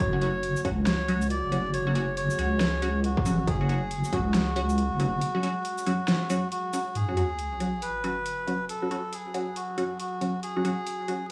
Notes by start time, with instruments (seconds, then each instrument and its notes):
Already playing: ambient pad F#4
0.00 wobble bass F#1, ambient pad G#4, melodica C#5, kick, closed hi-hat
0.13 synth stab F#3 C#4 F#4
0.21 synth stab F#3 C#4 F#4, closed hi-hat
0.43 closed hi-hat
0.56 shaker
0.65 wobble bass C#2, synth stab F#3 C#4 F#4, kick, closed hi-hat
0.87 melodica C#5, snare, closed hi-hat
1.08 synth stab F#3 C#4 F#4, closed hi-hat
1.22 shaker
1.30 melodica D5, closed hi-hat
1.43 wobble bass F#1
1.52 synth stab F#3 C#4 F#4, closed hi-hat
1.73 wobble bass F#1, melodica C#5, closed hi-hat
1.87 synth stab F#3 C#4 F#4
1.95 synth stab F#3 C#4 F#4, closed hi-hat
2.17 melodica C#5, closed hi-hat
2.30 shaker
2.39 wobble bass C#2, synth stab F#3 C#4 F#4, closed hi-hat
2.61 snare, closed hi-hat
2.82 synth stab F#3 C#4 F#4, closed hi-hat
3.04 melodica F#4, closed hi-hat
3.17 kick
3.26 wobble bass A1, synth stab F#3 C#4 F#4, closed hi-hat, shaker
3.47 wobble bass F#1, melodica G#4, kick, closed hi-hat
3.61 synth stab F#3 C#4 F#4
3.69 synth stab F#3 C#4 F#4, closed hi-hat
3.91 closed hi-hat
4.04 shaker
4.13 wobble bass C#2, synth stab F#3 C#4 F#4, melodica F#4, kick, closed hi-hat
4.34 snare, closed hi-hat
4.56 synth stab F#3 C#4 F#4, closed hi-hat
4.69 shaker
4.78 closed hi-hat
4.91 wobble bass F#1
5.00 synth stab F#3 C#4 F#4, closed hi-hat
5.21 closed hi-hat
5.35 synth stab F#3 C#4 F#4
5.43 synth stab F#3 C#4 F#4, closed hi-hat
5.65 closed hi-hat
5.78 shaker
5.86 synth stab F#3 C#4 F#4, closed hi-hat
6.08 snare, closed hi-hat
6.30 synth stab F#3 C#4 F#4, closed hi-hat, shaker
6.52 melodica F#4, closed hi-hat
6.73 synth stab F#3 C#4 F#4, closed hi-hat, shaker
6.95 ambient pad F#4 G#5, melodica G#4, closed hi-hat, sub drop
7.08 synth stab F#3 C#4 F#4
7.17 synth stab F#3 C#4 F#4, closed hi-hat
7.39 closed hi-hat
7.60 synth stab F#3 C#4 F#4, closed hi-hat
7.82 melodica B4, closed hi-hat
8.04 synth stab F#3 C#4 F#4, closed hi-hat
8.26 closed hi-hat
8.47 synth stab F#3 C#4 F#4, closed hi-hat
8.69 melodica A4, closed hi-hat
8.82 synth stab F#3 C#4 F#4
8.91 synth stab F#3 C#4 F#4, closed hi-hat
9.12 melodica G#4, closed hi-hat
9.34 synth stab F#3 C#4 F#4, closed hi-hat
9.56 melodica F#4, closed hi-hat
9.78 synth stab F#3 C#4 F#4, closed hi-hat
10.00 melodica F#4, closed hi-hat
10.21 synth stab F#3 C#4 F#4, closed hi-hat
10.43 melodica G#4, ambient pad F5, closed hi-hat
10.56 synth stab F#3 C#4 F#4
10.65 synth stab F#3 C#4 F#4, closed hi-hat
10.86 closed hi-hat
11.08 synth stab F#3 C#4 F#4, closed hi-hat